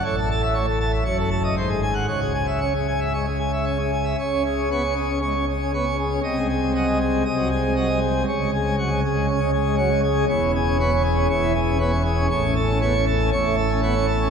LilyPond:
<<
  \new Staff \with { instrumentName = "Pipe organ" } { \time 4/4 \key cis \minor \tempo 4 = 118 cis''16 a'16 a''16 e''16 cis''16 a'16 a''16 e''16 cis''16 a'16 a''16 dis''16 bis'16 gis'16 gis''16 fis''16 | cis''16 gis'16 gis''16 e''16 cis''16 gis'16 gis''16 e''16 cis''16 gis'16 gis''16 e''16 cis''16 gis'16 gis''16 e''16 | cis''8 gis'8 cis''8 gis'8 cis''8 gis'8 cis''8 gis'8 | dis''8 gis'8 dis''8 gis'8 dis''8 gis'8 dis''8 gis'8 |
cis''8 gis'8 cis''8 gis'8 cis''8 gis'8 cis''8 gis'8 | cis''8 gis'8 cis''8 gis'8 cis''8 gis'8 cis''8 gis'8 | \key a \major cis''8 a'8 cis''8 a'8 cis''8 a'8 cis''8 a'8 | }
  \new Staff \with { instrumentName = "Pipe organ" } { \clef bass \time 4/4 \key cis \minor << { a,4 a16 r8. fis,4 gis,4 | cis4 cis'16 r8. gis16 r8. cis'16 r8. | cis16 cis'16 r16 cis'16 b16 cis'16 r16 cis'16 gis16 cis'16 r16 cis'16 b16 cis'16 r16 cis'16 | bis,16 gis16 r16 gis16 fis16 gis16 r16 gis16 bis,16 fis16 r16 gis16 fis16 gis16 r16 gis16 |
cis16 gis16 r16 gis16 fis16 gis16 r16 gis16 cis'16 gis16 r16 gis16 fis16 gis16 r16 gis16 | e,16 cis'16 r16 cis'16 b16 cis'16 r16 cis'16 e,16 e16 r16 cis'16 b16 cis'16 r16 cis'16 | \key a \major a,16 cis'16 r16 cis'16 b16 cis'16 r16 cis'16 a,16 a16 r16 cis'16 b16 cis'16 r16 cis'16 | } \\ { a,,2 fis,,4 gis,,4 | cis,1 | cis,1 | bis,,2 bis,,2 |
cis,1 | e,,2 e,,2 | a,,2 a,,2 | } >> }
>>